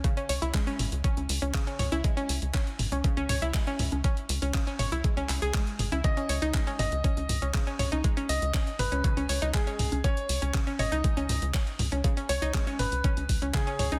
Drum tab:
HH |xxoxxxoxxxoxxxox|xxoxxxoxxxoxxxox|xxoxxxoxxxoxxxox|xxoxxxoxxxoxxxox|
CP |----x-------x---|----x-------x---|----x-----x-x---|----x-------x---|
T2 |------o-------o-|------o---o---o-|------o-------o-|------o---o---o-|
CG |----o----o-----o|----o----o-----o|----o----o-----o|----o----o-----o|
BD |o---o---o---o---|o---o---o---o---|o---o---o---o---|o---o---o---o---|

HH |xxoxxxoxxxoxxxox|xxoxxxoxxxoxxxox|xxoxxxoxxxoxxxox|
CP |----x-------x---|----x-------x---|----x-------x---|
T2 |------o-------o-|------o---o---o-|------o-------o-|
CG |----o----o-----o|----o----o-----o|----o----o-----o|
BD |o---o---o---o---|o---o---o---o---|o---o---o-o-o---|